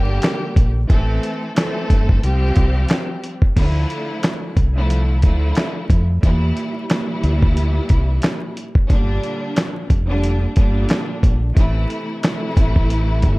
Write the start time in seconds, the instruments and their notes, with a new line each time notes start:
Already playing: fingered electric bass G1, string section D3 G3 A#3 G4
0.22 snare, clap, closed hi-hat
0.56 fingered electric bass A#1, kick, closed hi-hat
0.89 fingered electric bass A1, string section E3 A3 C4 A4, kick, closed hi-hat
1.23 closed hi-hat
1.55 string section E3 A3 C4 A4, snare, clap, closed hi-hat
1.90 fingered electric bass G1, kick, closed hi-hat
2.09 kick
2.22 fingered electric bass C2, string section F3 G3 C4 G4, closed hi-hat
2.56 fingered electric bass C2, kick, closed hi-hat
2.89 snare, clap, closed hi-hat
3.24 closed hi-hat
3.42 kick
3.56 fingered electric bass D2, string section D3 F3 A3 E4, kick, closed hi-hat, crash
3.90 closed hi-hat
4.23 snare, clap, closed hi-hat
4.57 fingered electric bass C2, kick, closed hi-hat
4.75 string section D3 F3 A3 E4
4.90 closed hi-hat
5.22 fingered electric bass D2, string section D3 F3 A3 E4, kick, closed hi-hat
5.55 snare, clap, closed hi-hat
5.90 fingered electric bass F2, kick, closed hi-hat
6.22 fingered electric bass E2, string section A#2 E3 G3 E4, kick, closed hi-hat
6.57 closed hi-hat
6.89 string section A#2 E3 G3 E4, snare, clap, closed hi-hat
7.23 fingered electric bass D2, closed hi-hat
7.42 kick
7.57 closed hi-hat
7.89 fingered electric bass C2, kick, closed hi-hat
8.22 snare, clap, closed hi-hat
8.57 closed hi-hat
8.75 kick
8.88 fingered electric bass G1, string section A#2 D3 G3 D4, kick, closed hi-hat
9.23 closed hi-hat
9.56 snare, clap, closed hi-hat
9.90 fingered electric bass F1, kick, closed hi-hat
10.07 string section A#2 D3 G3 D4
10.24 closed hi-hat
10.56 fingered electric bass G1, string section A#2 D3 G3 D4, kick, closed hi-hat
10.89 snare, clap, closed hi-hat
11.23 fingered electric bass A#1, kick, closed hi-hat
11.55 fingered electric bass A1, string section C3 E3 A3 E4, kick, closed hi-hat
11.90 closed hi-hat
12.22 string section C3 E3 A3 E4, snare, clap, closed hi-hat
12.57 fingered electric bass A1, kick, closed hi-hat
12.76 kick
12.90 closed hi-hat
13.22 fingered electric bass G1, kick, closed hi-hat